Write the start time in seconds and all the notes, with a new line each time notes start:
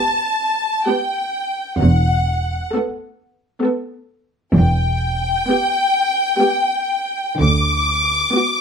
Already playing: B3 G4 A5
0.87 B3 G4 G5
1.79 E1 E2 F#5
2.73 B3 A4
3.63 B3 A4
4.55 E1 E2 G5
5.48 B3 G4
6.40 B3 G4
7.39 D2 D3 D6
8.35 B3 F#4